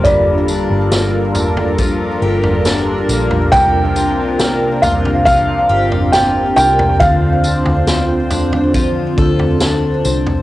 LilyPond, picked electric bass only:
\new Staff \with { instrumentName = "Picked electric bass" } { \clef bass \time 4/4 \key d \minor \tempo 4 = 69 g,,8. g,,4.~ g,,16 g,,4 bes,,8 | c,4. c,4 g,,4 c,8 | d,8. d,4.~ d,16 d,4 c,8 | }